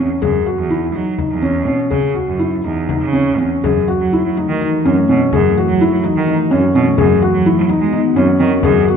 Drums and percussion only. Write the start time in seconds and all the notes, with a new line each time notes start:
0.22 frame drum
0.71 frame drum
1.18 frame drum
1.91 frame drum
2.40 frame drum
2.89 frame drum
3.14 frame drum
3.64 frame drum
4.37 frame drum
4.86 frame drum
5.33 frame drum
6.04 frame drum
6.51 frame drum
6.98 frame drum
7.69 frame drum
8.16 frame drum
8.63 frame drum